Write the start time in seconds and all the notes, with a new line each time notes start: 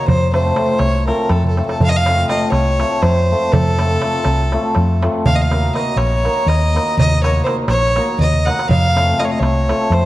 0.08 F2 C5, darbuka dum
0.21 darbuka tek
0.33 A3 C4 F4 A4 C5, darbuka tek
0.45 darbuka tek
0.56 A3 C4 F4 A4, darbuka tek
0.68 darbuka tek
0.79 C2 C#5, darbuka tek
0.93 darbuka tek
1.06 A3 C4 F4 A4 A#4, darbuka tek
1.18 darbuka tek
1.29 F2 A4, darbuka tek
1.44 A4, darbuka dum
1.57 A3 C4 F4 A4, darbuka tek
1.66 A4, darbuka tek
1.80 F2 F5, darbuka dum
1.89 D#5
1.93 F5, darbuka tek
2.06 A3 C4 F4 A4, darbuka tek
2.18 darbuka tek
2.29 A3 C4 F4 A4 D#5, darbuka tek
2.52 C2 C#5, darbuka tek
2.79 A3 C4 F4 A4, darbuka tek
2.92 darbuka tek
3.02 F2 C5, darbuka tek
3.31 A3 C4 F4 A4
3.52 F2 A4, darbuka dum
3.66 darbuka tek
3.79 A3 C4 F4 A4, darbuka tek
3.90 darbuka tek
4.02 A3 C4 F4 A4, darbuka tek
4.24 C2, darbuka tek
4.52 A3 C4 F4 A4, darbuka tek
4.63 darbuka tek
4.75 F2, darbuka tek
5.02 A3 C4 F4 A4, darbuka tek
5.26 D#2 F5, darbuka dum
5.35 D#5, darbuka tek
5.42 F5
5.50 A#3 D#4 F#4 A#4, darbuka tek
5.64 darbuka tek
5.74 A#3 D#4 F#4 A#4 D#5, darbuka tek
5.96 A#1 C#5, darbuka tek
6.23 A#3 D#4 F#4 A#4, darbuka tek
6.37 darbuka tek
6.46 D#2 D#5, darbuka tek
6.74 A#3 D#4 F#4 A#4, darbuka tek
6.97 D#2 D#5, darbuka dum
7.12 darbuka tek
7.23 A#3 D#4 F#4 A#4 C#5, darbuka tek
7.36 darbuka tek
7.44 A#3 D#4 F#4 A#4 C5, darbuka tek
7.68 A#1 C#5, darbuka tek
7.83 darbuka tek
7.96 A#3 D#4 F#4 A#4, darbuka tek
8.08 darbuka tek
8.19 D#2 D#5, darbuka dum
8.33 darbuka dum
8.45 A#3 D#4 F#4 A#4 F#5, darbuka tek
8.59 darbuka tek
8.69 F2 F5, darbuka dum
8.83 darbuka tek
8.95 A3 C4 F4 A4, darbuka tek
9.08 darbuka tek
9.17 A3 C4 F4 A4 D#5, darbuka tek
9.24 C#5
9.31 D#5
9.40 C2 C#5, darbuka tek
9.68 A3 C4 F4 A4, darbuka tek
9.81 darbuka tek
9.90 F2 C5, darbuka tek